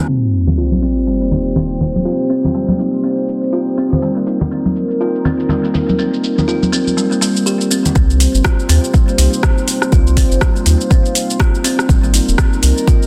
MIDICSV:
0, 0, Header, 1, 6, 480
1, 0, Start_track
1, 0, Tempo, 491803
1, 84, Time_signature, 4, 2, 24, 8
1, 12752, End_track
2, 0, Start_track
2, 0, Title_t, "Analog synth pad"
2, 0, Program_c, 0, 89
2, 84, Note_on_c, 0, 60, 78
2, 84, Note_on_c, 0, 72, 86
2, 86, Note_on_c, 0, 67, 72
2, 3885, Note_off_c, 0, 60, 0
2, 3886, Note_off_c, 0, 67, 0
2, 3886, Note_off_c, 0, 72, 0
2, 3922, Note_on_c, 0, 70, 86
2, 3924, Note_on_c, 0, 63, 71
2, 7725, Note_off_c, 0, 70, 0
2, 7726, Note_off_c, 0, 63, 0
2, 7767, Note_on_c, 0, 60, 83
2, 7767, Note_on_c, 0, 67, 76
2, 7768, Note_on_c, 0, 72, 92
2, 9666, Note_off_c, 0, 67, 0
2, 9686, Note_on_c, 0, 65, 74
2, 11567, Note_off_c, 0, 60, 0
2, 11568, Note_off_c, 0, 72, 0
2, 11586, Note_off_c, 0, 65, 0
2, 11604, Note_on_c, 0, 63, 75
2, 11605, Note_on_c, 0, 70, 89
2, 12752, Note_off_c, 0, 63, 0
2, 12752, Note_off_c, 0, 70, 0
2, 12752, End_track
3, 0, Start_track
3, 0, Title_t, "Kalimba"
3, 0, Program_c, 1, 108
3, 83, Note_on_c, 1, 60, 74
3, 216, Note_off_c, 1, 60, 0
3, 563, Note_on_c, 1, 65, 93
3, 689, Note_off_c, 1, 65, 0
3, 803, Note_on_c, 1, 60, 89
3, 929, Note_off_c, 1, 60, 0
3, 1045, Note_on_c, 1, 55, 73
3, 1120, Note_off_c, 1, 55, 0
3, 1183, Note_on_c, 1, 58, 72
3, 1237, Note_off_c, 1, 58, 0
3, 1286, Note_on_c, 1, 63, 75
3, 1417, Note_off_c, 1, 63, 0
3, 1524, Note_on_c, 1, 60, 78
3, 1656, Note_off_c, 1, 60, 0
3, 2002, Note_on_c, 1, 65, 93
3, 2129, Note_off_c, 1, 65, 0
3, 2242, Note_on_c, 1, 60, 92
3, 2369, Note_off_c, 1, 60, 0
3, 2484, Note_on_c, 1, 55, 78
3, 2559, Note_off_c, 1, 55, 0
3, 2623, Note_on_c, 1, 58, 73
3, 2677, Note_off_c, 1, 58, 0
3, 2723, Note_on_c, 1, 63, 72
3, 2856, Note_off_c, 1, 63, 0
3, 2963, Note_on_c, 1, 60, 79
3, 3096, Note_off_c, 1, 60, 0
3, 3443, Note_on_c, 1, 65, 97
3, 3569, Note_off_c, 1, 65, 0
3, 3686, Note_on_c, 1, 60, 93
3, 3811, Note_off_c, 1, 60, 0
3, 3926, Note_on_c, 1, 55, 80
3, 4000, Note_off_c, 1, 55, 0
3, 4066, Note_on_c, 1, 58, 73
3, 4119, Note_off_c, 1, 58, 0
3, 4166, Note_on_c, 1, 63, 73
3, 4297, Note_off_c, 1, 63, 0
3, 4405, Note_on_c, 1, 60, 76
3, 4537, Note_off_c, 1, 60, 0
3, 4885, Note_on_c, 1, 65, 97
3, 5010, Note_off_c, 1, 65, 0
3, 5125, Note_on_c, 1, 60, 97
3, 5250, Note_off_c, 1, 60, 0
3, 5364, Note_on_c, 1, 55, 78
3, 5439, Note_off_c, 1, 55, 0
3, 5504, Note_on_c, 1, 58, 72
3, 5558, Note_off_c, 1, 58, 0
3, 5602, Note_on_c, 1, 63, 75
3, 5736, Note_off_c, 1, 63, 0
3, 5842, Note_on_c, 1, 60, 77
3, 5976, Note_off_c, 1, 60, 0
3, 6323, Note_on_c, 1, 65, 93
3, 6449, Note_off_c, 1, 65, 0
3, 6563, Note_on_c, 1, 60, 93
3, 6689, Note_off_c, 1, 60, 0
3, 6804, Note_on_c, 1, 55, 81
3, 6879, Note_off_c, 1, 55, 0
3, 6940, Note_on_c, 1, 58, 73
3, 6996, Note_off_c, 1, 58, 0
3, 7040, Note_on_c, 1, 55, 98
3, 7168, Note_off_c, 1, 55, 0
3, 7282, Note_on_c, 1, 67, 81
3, 7408, Note_off_c, 1, 67, 0
3, 7523, Note_on_c, 1, 60, 73
3, 7649, Note_off_c, 1, 60, 0
3, 7762, Note_on_c, 1, 60, 81
3, 7896, Note_off_c, 1, 60, 0
3, 8242, Note_on_c, 1, 65, 101
3, 8368, Note_off_c, 1, 65, 0
3, 8481, Note_on_c, 1, 60, 98
3, 8608, Note_off_c, 1, 60, 0
3, 8722, Note_on_c, 1, 55, 84
3, 8798, Note_off_c, 1, 55, 0
3, 8862, Note_on_c, 1, 58, 78
3, 8917, Note_off_c, 1, 58, 0
3, 8961, Note_on_c, 1, 63, 81
3, 9095, Note_off_c, 1, 63, 0
3, 9204, Note_on_c, 1, 60, 81
3, 9336, Note_off_c, 1, 60, 0
3, 9683, Note_on_c, 1, 65, 100
3, 9809, Note_off_c, 1, 65, 0
3, 9925, Note_on_c, 1, 60, 98
3, 10050, Note_off_c, 1, 60, 0
3, 10161, Note_on_c, 1, 55, 84
3, 10238, Note_off_c, 1, 55, 0
3, 10303, Note_on_c, 1, 58, 76
3, 10358, Note_off_c, 1, 58, 0
3, 10404, Note_on_c, 1, 63, 79
3, 10536, Note_off_c, 1, 63, 0
3, 10643, Note_on_c, 1, 60, 81
3, 10776, Note_off_c, 1, 60, 0
3, 11123, Note_on_c, 1, 65, 99
3, 11249, Note_off_c, 1, 65, 0
3, 11363, Note_on_c, 1, 60, 105
3, 11489, Note_off_c, 1, 60, 0
3, 11605, Note_on_c, 1, 55, 83
3, 11680, Note_off_c, 1, 55, 0
3, 11746, Note_on_c, 1, 58, 79
3, 11799, Note_off_c, 1, 58, 0
3, 11847, Note_on_c, 1, 63, 76
3, 11978, Note_off_c, 1, 63, 0
3, 12086, Note_on_c, 1, 60, 84
3, 12218, Note_off_c, 1, 60, 0
3, 12566, Note_on_c, 1, 65, 106
3, 12690, Note_off_c, 1, 65, 0
3, 12752, End_track
4, 0, Start_track
4, 0, Title_t, "Analog synth bass"
4, 0, Program_c, 2, 38
4, 7766, Note_on_c, 2, 36, 102
4, 8064, Note_off_c, 2, 36, 0
4, 8141, Note_on_c, 2, 31, 85
4, 8206, Note_off_c, 2, 31, 0
4, 8483, Note_on_c, 2, 39, 89
4, 8572, Note_off_c, 2, 39, 0
4, 8963, Note_on_c, 2, 36, 96
4, 9052, Note_off_c, 2, 36, 0
4, 9686, Note_on_c, 2, 36, 100
4, 9983, Note_off_c, 2, 36, 0
4, 10063, Note_on_c, 2, 31, 86
4, 10127, Note_off_c, 2, 31, 0
4, 10405, Note_on_c, 2, 39, 90
4, 10493, Note_off_c, 2, 39, 0
4, 11606, Note_on_c, 2, 32, 97
4, 11903, Note_off_c, 2, 32, 0
4, 11988, Note_on_c, 2, 27, 90
4, 12050, Note_off_c, 2, 27, 0
4, 12327, Note_on_c, 2, 36, 91
4, 12414, Note_off_c, 2, 36, 0
4, 12752, End_track
5, 0, Start_track
5, 0, Title_t, "Sub drop"
5, 0, Program_c, 3, 103
5, 82, Note_on_c, 3, 60, 69
5, 2003, Note_off_c, 3, 60, 0
5, 12752, End_track
6, 0, Start_track
6, 0, Title_t, "Drums"
6, 84, Note_on_c, 9, 49, 80
6, 182, Note_off_c, 9, 49, 0
6, 329, Note_on_c, 9, 69, 80
6, 426, Note_off_c, 9, 69, 0
6, 460, Note_on_c, 9, 64, 107
6, 463, Note_on_c, 9, 63, 59
6, 468, Note_on_c, 9, 69, 35
6, 558, Note_off_c, 9, 64, 0
6, 561, Note_off_c, 9, 63, 0
6, 566, Note_off_c, 9, 69, 0
6, 568, Note_on_c, 9, 69, 45
6, 666, Note_off_c, 9, 69, 0
6, 699, Note_on_c, 9, 63, 97
6, 709, Note_on_c, 9, 69, 23
6, 796, Note_off_c, 9, 63, 0
6, 806, Note_off_c, 9, 69, 0
6, 811, Note_on_c, 9, 69, 82
6, 908, Note_off_c, 9, 69, 0
6, 951, Note_on_c, 9, 69, 36
6, 1049, Note_off_c, 9, 69, 0
6, 1050, Note_on_c, 9, 69, 49
6, 1148, Note_off_c, 9, 69, 0
6, 1190, Note_on_c, 9, 69, 24
6, 1283, Note_on_c, 9, 64, 95
6, 1288, Note_off_c, 9, 69, 0
6, 1290, Note_on_c, 9, 69, 88
6, 1380, Note_off_c, 9, 64, 0
6, 1387, Note_off_c, 9, 69, 0
6, 1431, Note_on_c, 9, 69, 36
6, 1520, Note_on_c, 9, 64, 104
6, 1528, Note_off_c, 9, 69, 0
6, 1528, Note_on_c, 9, 69, 49
6, 1618, Note_off_c, 9, 64, 0
6, 1626, Note_off_c, 9, 69, 0
6, 1670, Note_on_c, 9, 69, 25
6, 1764, Note_on_c, 9, 64, 98
6, 1768, Note_off_c, 9, 69, 0
6, 1769, Note_on_c, 9, 69, 85
6, 1861, Note_off_c, 9, 64, 0
6, 1867, Note_off_c, 9, 69, 0
6, 1909, Note_on_c, 9, 63, 88
6, 1911, Note_on_c, 9, 69, 37
6, 2006, Note_off_c, 9, 63, 0
6, 2008, Note_off_c, 9, 69, 0
6, 2011, Note_on_c, 9, 69, 55
6, 2108, Note_off_c, 9, 69, 0
6, 2151, Note_on_c, 9, 69, 26
6, 2249, Note_off_c, 9, 69, 0
6, 2250, Note_on_c, 9, 69, 86
6, 2348, Note_off_c, 9, 69, 0
6, 2384, Note_on_c, 9, 63, 63
6, 2390, Note_on_c, 9, 64, 103
6, 2390, Note_on_c, 9, 69, 38
6, 2481, Note_off_c, 9, 63, 0
6, 2487, Note_off_c, 9, 69, 0
6, 2488, Note_off_c, 9, 64, 0
6, 2490, Note_on_c, 9, 69, 49
6, 2588, Note_off_c, 9, 69, 0
6, 2618, Note_on_c, 9, 63, 106
6, 2629, Note_on_c, 9, 69, 25
6, 2716, Note_off_c, 9, 63, 0
6, 2727, Note_off_c, 9, 69, 0
6, 2730, Note_on_c, 9, 69, 90
6, 2828, Note_off_c, 9, 69, 0
6, 2870, Note_on_c, 9, 69, 38
6, 2967, Note_off_c, 9, 69, 0
6, 2969, Note_on_c, 9, 69, 51
6, 3067, Note_off_c, 9, 69, 0
6, 3110, Note_on_c, 9, 69, 24
6, 3208, Note_off_c, 9, 69, 0
6, 3208, Note_on_c, 9, 69, 90
6, 3306, Note_off_c, 9, 69, 0
6, 3350, Note_on_c, 9, 69, 37
6, 3448, Note_off_c, 9, 69, 0
6, 3450, Note_on_c, 9, 69, 51
6, 3548, Note_off_c, 9, 69, 0
6, 3589, Note_on_c, 9, 69, 27
6, 3687, Note_off_c, 9, 69, 0
6, 3688, Note_on_c, 9, 69, 85
6, 3785, Note_off_c, 9, 69, 0
6, 3829, Note_on_c, 9, 69, 38
6, 3832, Note_on_c, 9, 64, 110
6, 3927, Note_off_c, 9, 69, 0
6, 3928, Note_on_c, 9, 69, 56
6, 3929, Note_off_c, 9, 64, 0
6, 4026, Note_off_c, 9, 69, 0
6, 4066, Note_on_c, 9, 69, 27
6, 4164, Note_off_c, 9, 69, 0
6, 4167, Note_on_c, 9, 69, 88
6, 4265, Note_off_c, 9, 69, 0
6, 4304, Note_on_c, 9, 64, 107
6, 4306, Note_on_c, 9, 63, 64
6, 4308, Note_on_c, 9, 69, 38
6, 4402, Note_off_c, 9, 64, 0
6, 4403, Note_off_c, 9, 63, 0
6, 4406, Note_off_c, 9, 69, 0
6, 4408, Note_on_c, 9, 69, 50
6, 4505, Note_off_c, 9, 69, 0
6, 4543, Note_on_c, 9, 63, 108
6, 4547, Note_on_c, 9, 69, 26
6, 4640, Note_off_c, 9, 63, 0
6, 4644, Note_off_c, 9, 69, 0
6, 4648, Note_on_c, 9, 69, 91
6, 4746, Note_off_c, 9, 69, 0
6, 4788, Note_on_c, 9, 69, 39
6, 4886, Note_off_c, 9, 69, 0
6, 4889, Note_on_c, 9, 69, 54
6, 4987, Note_off_c, 9, 69, 0
6, 5029, Note_on_c, 9, 69, 25
6, 5125, Note_on_c, 9, 64, 101
6, 5127, Note_off_c, 9, 69, 0
6, 5127, Note_on_c, 9, 69, 93
6, 5223, Note_off_c, 9, 64, 0
6, 5225, Note_off_c, 9, 69, 0
6, 5267, Note_on_c, 9, 69, 37
6, 5357, Note_on_c, 9, 64, 94
6, 5365, Note_off_c, 9, 69, 0
6, 5369, Note_on_c, 9, 69, 52
6, 5455, Note_off_c, 9, 64, 0
6, 5467, Note_off_c, 9, 69, 0
6, 5509, Note_on_c, 9, 69, 27
6, 5607, Note_off_c, 9, 69, 0
6, 5608, Note_on_c, 9, 69, 88
6, 5609, Note_on_c, 9, 64, 100
6, 5706, Note_off_c, 9, 69, 0
6, 5707, Note_off_c, 9, 64, 0
6, 5749, Note_on_c, 9, 69, 39
6, 5751, Note_on_c, 9, 63, 98
6, 5846, Note_off_c, 9, 69, 0
6, 5848, Note_on_c, 9, 69, 55
6, 5849, Note_off_c, 9, 63, 0
6, 5945, Note_off_c, 9, 69, 0
6, 5990, Note_on_c, 9, 69, 27
6, 6088, Note_off_c, 9, 69, 0
6, 6089, Note_on_c, 9, 69, 86
6, 6187, Note_off_c, 9, 69, 0
6, 6225, Note_on_c, 9, 63, 60
6, 6229, Note_on_c, 9, 69, 37
6, 6230, Note_on_c, 9, 64, 97
6, 6323, Note_off_c, 9, 63, 0
6, 6327, Note_off_c, 9, 69, 0
6, 6328, Note_off_c, 9, 64, 0
6, 6331, Note_on_c, 9, 69, 50
6, 6429, Note_off_c, 9, 69, 0
6, 6468, Note_on_c, 9, 63, 110
6, 6469, Note_on_c, 9, 69, 26
6, 6565, Note_off_c, 9, 63, 0
6, 6567, Note_off_c, 9, 69, 0
6, 6570, Note_on_c, 9, 69, 90
6, 6667, Note_off_c, 9, 69, 0
6, 6707, Note_on_c, 9, 63, 62
6, 6709, Note_on_c, 9, 69, 40
6, 6804, Note_off_c, 9, 63, 0
6, 6807, Note_off_c, 9, 69, 0
6, 6810, Note_on_c, 9, 69, 52
6, 6908, Note_off_c, 9, 69, 0
6, 6950, Note_on_c, 9, 69, 25
6, 7047, Note_off_c, 9, 69, 0
6, 7049, Note_on_c, 9, 69, 91
6, 7147, Note_off_c, 9, 69, 0
6, 7187, Note_on_c, 9, 69, 38
6, 7284, Note_off_c, 9, 69, 0
6, 7287, Note_on_c, 9, 69, 53
6, 7385, Note_off_c, 9, 69, 0
6, 7426, Note_on_c, 9, 69, 27
6, 7524, Note_off_c, 9, 69, 0
6, 7526, Note_on_c, 9, 69, 89
6, 7624, Note_off_c, 9, 69, 0
6, 7666, Note_on_c, 9, 64, 96
6, 7666, Note_on_c, 9, 69, 37
6, 7764, Note_off_c, 9, 64, 0
6, 7764, Note_off_c, 9, 69, 0
6, 7766, Note_on_c, 9, 36, 117
6, 7767, Note_on_c, 9, 69, 55
6, 7864, Note_off_c, 9, 36, 0
6, 7864, Note_off_c, 9, 69, 0
6, 7907, Note_on_c, 9, 69, 27
6, 8004, Note_off_c, 9, 69, 0
6, 8005, Note_on_c, 9, 46, 94
6, 8010, Note_on_c, 9, 69, 93
6, 8103, Note_off_c, 9, 46, 0
6, 8107, Note_off_c, 9, 69, 0
6, 8148, Note_on_c, 9, 69, 40
6, 8244, Note_on_c, 9, 37, 112
6, 8245, Note_off_c, 9, 69, 0
6, 8246, Note_on_c, 9, 36, 117
6, 8248, Note_on_c, 9, 69, 51
6, 8341, Note_off_c, 9, 37, 0
6, 8343, Note_off_c, 9, 36, 0
6, 8345, Note_off_c, 9, 69, 0
6, 8388, Note_on_c, 9, 69, 26
6, 8485, Note_on_c, 9, 46, 83
6, 8486, Note_off_c, 9, 69, 0
6, 8489, Note_on_c, 9, 69, 94
6, 8583, Note_off_c, 9, 46, 0
6, 8587, Note_off_c, 9, 69, 0
6, 8628, Note_on_c, 9, 69, 39
6, 8725, Note_off_c, 9, 69, 0
6, 8726, Note_on_c, 9, 36, 115
6, 8730, Note_on_c, 9, 69, 53
6, 8824, Note_off_c, 9, 36, 0
6, 8827, Note_off_c, 9, 69, 0
6, 8868, Note_on_c, 9, 69, 27
6, 8964, Note_on_c, 9, 46, 94
6, 8966, Note_off_c, 9, 69, 0
6, 8968, Note_on_c, 9, 69, 95
6, 9061, Note_off_c, 9, 46, 0
6, 9066, Note_off_c, 9, 69, 0
6, 9109, Note_on_c, 9, 69, 40
6, 9205, Note_on_c, 9, 37, 108
6, 9206, Note_off_c, 9, 69, 0
6, 9206, Note_on_c, 9, 36, 121
6, 9210, Note_on_c, 9, 69, 54
6, 9303, Note_off_c, 9, 37, 0
6, 9304, Note_off_c, 9, 36, 0
6, 9307, Note_off_c, 9, 69, 0
6, 9349, Note_on_c, 9, 69, 27
6, 9444, Note_on_c, 9, 46, 80
6, 9446, Note_off_c, 9, 69, 0
6, 9448, Note_on_c, 9, 69, 95
6, 9542, Note_off_c, 9, 46, 0
6, 9546, Note_off_c, 9, 69, 0
6, 9584, Note_on_c, 9, 37, 63
6, 9588, Note_on_c, 9, 69, 41
6, 9681, Note_off_c, 9, 37, 0
6, 9686, Note_off_c, 9, 69, 0
6, 9687, Note_on_c, 9, 36, 125
6, 9688, Note_on_c, 9, 69, 57
6, 9784, Note_off_c, 9, 36, 0
6, 9786, Note_off_c, 9, 69, 0
6, 9828, Note_on_c, 9, 69, 29
6, 9924, Note_on_c, 9, 46, 89
6, 9925, Note_off_c, 9, 69, 0
6, 9927, Note_on_c, 9, 36, 63
6, 9928, Note_on_c, 9, 69, 97
6, 10022, Note_off_c, 9, 46, 0
6, 10024, Note_off_c, 9, 36, 0
6, 10026, Note_off_c, 9, 69, 0
6, 10069, Note_on_c, 9, 69, 42
6, 10163, Note_on_c, 9, 37, 108
6, 10166, Note_on_c, 9, 36, 119
6, 10167, Note_off_c, 9, 69, 0
6, 10167, Note_on_c, 9, 69, 55
6, 10260, Note_off_c, 9, 37, 0
6, 10264, Note_off_c, 9, 36, 0
6, 10265, Note_off_c, 9, 69, 0
6, 10308, Note_on_c, 9, 69, 27
6, 10403, Note_on_c, 9, 46, 84
6, 10406, Note_off_c, 9, 69, 0
6, 10408, Note_on_c, 9, 69, 98
6, 10501, Note_off_c, 9, 46, 0
6, 10505, Note_off_c, 9, 69, 0
6, 10548, Note_on_c, 9, 69, 41
6, 10645, Note_off_c, 9, 69, 0
6, 10646, Note_on_c, 9, 36, 126
6, 10648, Note_on_c, 9, 69, 57
6, 10744, Note_off_c, 9, 36, 0
6, 10746, Note_off_c, 9, 69, 0
6, 10789, Note_on_c, 9, 69, 27
6, 10885, Note_on_c, 9, 46, 91
6, 10887, Note_off_c, 9, 69, 0
6, 10889, Note_on_c, 9, 69, 98
6, 10982, Note_off_c, 9, 46, 0
6, 10987, Note_off_c, 9, 69, 0
6, 11030, Note_on_c, 9, 69, 42
6, 11126, Note_on_c, 9, 36, 124
6, 11127, Note_off_c, 9, 69, 0
6, 11127, Note_on_c, 9, 37, 117
6, 11131, Note_on_c, 9, 69, 56
6, 11223, Note_off_c, 9, 36, 0
6, 11224, Note_off_c, 9, 37, 0
6, 11229, Note_off_c, 9, 69, 0
6, 11270, Note_on_c, 9, 69, 28
6, 11365, Note_on_c, 9, 46, 79
6, 11367, Note_off_c, 9, 69, 0
6, 11369, Note_on_c, 9, 69, 95
6, 11463, Note_off_c, 9, 46, 0
6, 11467, Note_off_c, 9, 69, 0
6, 11506, Note_on_c, 9, 37, 67
6, 11511, Note_on_c, 9, 69, 40
6, 11604, Note_off_c, 9, 37, 0
6, 11605, Note_on_c, 9, 36, 124
6, 11608, Note_off_c, 9, 69, 0
6, 11611, Note_on_c, 9, 69, 60
6, 11703, Note_off_c, 9, 36, 0
6, 11708, Note_off_c, 9, 69, 0
6, 11750, Note_on_c, 9, 69, 29
6, 11846, Note_on_c, 9, 46, 89
6, 11848, Note_off_c, 9, 69, 0
6, 11850, Note_on_c, 9, 69, 98
6, 11944, Note_off_c, 9, 46, 0
6, 11948, Note_off_c, 9, 69, 0
6, 11990, Note_on_c, 9, 69, 41
6, 12084, Note_on_c, 9, 37, 110
6, 12086, Note_on_c, 9, 36, 125
6, 12088, Note_off_c, 9, 69, 0
6, 12088, Note_on_c, 9, 69, 57
6, 12182, Note_off_c, 9, 37, 0
6, 12184, Note_off_c, 9, 36, 0
6, 12186, Note_off_c, 9, 69, 0
6, 12230, Note_on_c, 9, 69, 29
6, 12324, Note_on_c, 9, 46, 78
6, 12328, Note_off_c, 9, 69, 0
6, 12328, Note_on_c, 9, 69, 100
6, 12421, Note_off_c, 9, 46, 0
6, 12426, Note_off_c, 9, 69, 0
6, 12469, Note_on_c, 9, 69, 41
6, 12566, Note_off_c, 9, 69, 0
6, 12566, Note_on_c, 9, 36, 127
6, 12571, Note_on_c, 9, 69, 55
6, 12664, Note_off_c, 9, 36, 0
6, 12668, Note_off_c, 9, 69, 0
6, 12712, Note_on_c, 9, 69, 26
6, 12752, Note_off_c, 9, 69, 0
6, 12752, End_track
0, 0, End_of_file